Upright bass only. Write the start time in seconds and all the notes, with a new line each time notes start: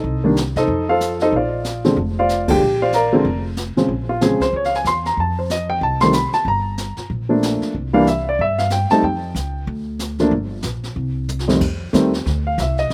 0.04 C2
0.56 C3
0.68 F2
1.32 A#1
1.97 F1
2.61 A#1
3.25 F1
3.76 muted upright bass stroke
3.89 A#1
4.40 muted upright bass stroke
4.53 C#2
4.85 E2
5.17 F2
5.81 C2
6.32 muted upright bass stroke
6.45 G1
6.97 muted upright bass stroke
7.10 A#1
7.62 muted upright bass stroke
7.75 C2
8.39 G2
8.91 muted upright bass stroke
9.03 F2
9.35 C#2
9.67 D2
10.31 G1
10.64 A#1
10.96 C2
11.60 F2
11.93 D#2
12.26 D2
12.58 C2
12.90 A1